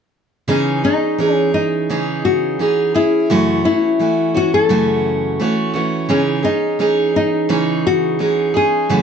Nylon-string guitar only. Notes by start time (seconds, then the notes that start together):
0.50 C#4
0.85 D#4
1.34 C#4
1.54 D#4
2.25 F#4
2.95 E4
3.65 E4
4.37 F#4
4.54 A4
6.11 C#4
6.44 D#4
7.16 D#4
7.87 F#4
8.57 G#4